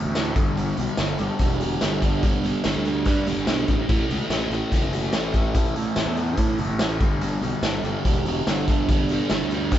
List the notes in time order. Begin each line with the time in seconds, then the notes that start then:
Already playing: A2 E3 A3
0.05 D2
0.15 A2 E3 A3, snare, closed hi-hat, tambourine
0.36 G1 G2 D3 G3, kick, closed hi-hat
0.57 G2 D3 G3, closed hi-hat
0.77 B1 G2 D3 G3, closed hi-hat
0.97 G1 G2 D3 G3, snare, closed hi-hat, tambourine
1.19 G1 G2 D3 G3, closed hi-hat
1.39 E1 G2 D3 G3, kick, closed hi-hat
1.60 G2 D3 G3, closed hi-hat
1.81 G1 G2 D3 G3, snare, closed hi-hat, tambourine
2.02 G2 D3 G3, kick, closed hi-hat
2.23 G2 D3 G3, kick, closed hi-hat
2.43 G2 D3 G3, closed hi-hat
2.64 G1 G2 D3 G3, snare, closed hi-hat, tambourine
2.76 D2
2.85 G2 D3 G3, closed hi-hat
3.05 G2 D3 G3, kick, closed hi-hat
3.26 E1 G2 D3 G3, closed hi-hat
3.37 G1
3.47 B1 G2 D3 G3, snare, closed hi-hat, tambourine
3.68 A1 G2 D3 G3, kick, closed hi-hat
3.89 A1 A2 E3 A3, kick, closed hi-hat
4.10 C#2 A2 E3 A3, closed hi-hat
4.30 A1 A2 E3 A3, snare, closed hi-hat, tambourine
4.50 A1 A2 E3 A3, closed hi-hat
4.72 F#1 A2 E3 A3, kick, closed hi-hat
4.93 A2 E3 A3, closed hi-hat
5.13 A1 A2 E3 A3, snare, closed hi-hat, tambourine
5.34 A2 E3 A3, kick, closed hi-hat
5.55 A2 E3 A3, kick, closed hi-hat
5.76 A2 E3 A3, closed hi-hat
5.96 A1 A2 E3 A3, snare, closed hi-hat, tambourine
6.06 E2
6.17 A2 E3 A3, closed hi-hat
6.37 A2 E3 A3, kick, closed hi-hat
6.58 F#1 A2 E3 A3, closed hi-hat
6.70 A1
6.79 A2 E3 A3, snare, closed hi-hat, tambourine
7.00 G1 G2 D3 G3, kick, closed hi-hat
7.21 G2 D3 G3, closed hi-hat
7.41 B1 G2 D3 G3, closed hi-hat
7.62 G1 G2 D3 G3, snare, closed hi-hat, tambourine
7.84 G1 G2 D3 G3, closed hi-hat
8.05 E1 G2 D3 G3, kick, closed hi-hat
8.26 G2 D3 G3, closed hi-hat
8.47 G1 G2 D3 G3, snare, closed hi-hat, tambourine
8.68 G2 D3 G3, kick, snare, closed hi-hat
8.89 G2 D3 G3, kick, closed hi-hat
9.09 G2 D3 G3, closed hi-hat
9.30 G1 G2 D3 G3, snare, closed hi-hat, tambourine
9.42 D2
9.51 G2 D3 G3, closed hi-hat
9.72 G2 D3 G3, kick, closed hi-hat